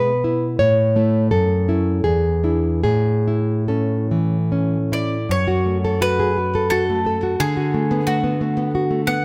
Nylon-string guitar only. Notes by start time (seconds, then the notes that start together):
Already playing: B2 G#3 B3 B4
0.24 E4
0.59 A2 C#5
0.96 A3 E4
1.31 F#2 A4
1.68 C#4 E4
2.04 E2 G#4
2.44 D4 E4
2.84 A2 G#4
3.28 E4
3.68 C#4 A4
4.11 E3
4.52 C#4
4.92 E4
5.29 F#2
5.48 F#4
5.66 A3
5.85 A4
6.01 F#4
6.20 G#4
6.37 F#4
6.55 A4
6.72 F#4
6.90 A3
7.06 A4
7.23 F#4
7.40 D3
7.57 F#4
7.74 A3
7.91 B3
8.07 A3
8.24 B3
8.41 A3
8.57 B3
8.75 F#4
8.91 A3
9.08 B3